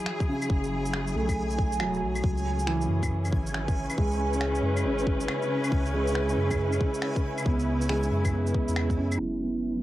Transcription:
Already playing: felt piano E3, string section F#3 E4 G#4, synth texture G#5
0.06 finger snap
0.20 kick, shaker
0.28 felt piano C#3
0.42 claves, shaker
0.50 sub bass F#1, kick
0.64 shaker
0.86 shaker
0.94 finger snap
1.07 shaker
1.15 sub bass B1, felt piano A3
1.29 kick, claves, shaker
1.50 shaker
1.59 kick
1.72 shaker
1.80 sub bass E1, felt piano F#3, finger snap, claves
1.94 shaker
2.02 sub bass B1
2.16 claves, shaker
2.24 sub bass C#2, string section C#3, kick
2.37 string section C#4, shaker
2.59 shaker
2.67 felt piano E3, finger snap
2.81 string section E4, shaker
2.89 sub bass F#2
3.03 kick, claves, shaker
3.25 claves, shaker
3.33 sub bass G#1, kick
3.47 string section B4, shaker
3.54 finger snap
3.68 kick, shaker
3.90 claves, shaker
3.98 sub bass C#2, felt piano G#3, kick
4.12 shaker
4.33 shaker
4.41 finger snap
4.55 shaker
4.62 sub bass F#2
4.77 claves, shaker
4.84 sub bass G#1, felt piano C#4
4.98 shaker
5.07 kick
5.20 shaker
5.28 finger snap, claves
5.42 shaker
5.64 claves, shaker
5.72 sub bass C#2, kick
5.86 shaker
5.94 felt piano G#3
6.07 shaker
6.15 finger snap
6.29 shaker
6.37 sub bass F#2
6.51 kick, claves, shaker
6.72 claves, shaker
6.81 kick
6.94 shaker
7.02 finger snap
7.16 kick, shaker
7.38 claves, shaker
7.46 sub bass C#2, felt piano B3, kick
7.59 shaker
7.81 shaker
7.89 felt piano G#3, finger snap
8.03 shaker
8.11 sub bass F#2
8.25 kick, claves, shaker
8.33 felt piano B3
8.47 shaker
8.54 kick
8.68 sub bass E2, shaker
8.76 finger snap, claves
8.90 kick, shaker
8.97 sub bass F#2, felt piano C#4
9.12 claves, shaker
9.17 sub bass F#1, string section F#3, felt piano E4, synth texture G#4
9.42 felt piano B3
9.72 string section G#4

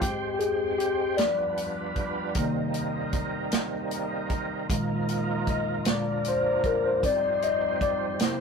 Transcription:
Already playing: tonewheel organ C5
0.01 tine electric piano G#2 G#3 C4 G4, tonewheel organ G#3 C4 G5, kick, closed hi-hat
0.34 tine electric piano G4
0.39 tine electric piano G#4, closed hi-hat
0.78 tine electric piano G4, closed hi-hat
1.17 tine electric piano G2 F3 B3 D5, tonewheel organ G3 B3 D4 F4 B4, snare, closed hi-hat
1.57 closed hi-hat
1.96 kick, closed hi-hat
2.35 tine electric piano C3 D#3 A#3, tonewheel organ A#3 C4 D#4 A#4, kick, closed hi-hat
2.74 closed hi-hat
3.13 kick, closed hi-hat
3.52 snare, closed hi-hat
3.91 closed hi-hat
4.30 kick, closed hi-hat
4.69 tine electric piano A#2 D#3 G#3, tonewheel organ F3 A#3 F4 A#4, kick, closed hi-hat
5.09 closed hi-hat
5.47 tine electric piano D#5, kick, closed hi-hat
5.85 tine electric piano A#2 D3 G#3, tonewheel organ A#3 D4, snare, closed hi-hat
5.90 tine electric piano D5
6.25 tine electric piano C5, closed hi-hat
6.64 tine electric piano A#4, kick, closed hi-hat
6.86 tine electric piano C5
7.03 tine electric piano G#2 G3 C4 D5, tonewheel organ C4 D#4 G4 C5, kick, closed hi-hat
7.42 tine electric piano D#5, closed hi-hat
7.81 tine electric piano D5, kick, closed hi-hat
8.20 tine electric piano C3 A#3 E4 C5, tonewheel organ A#3 C4 E4, snare, closed hi-hat

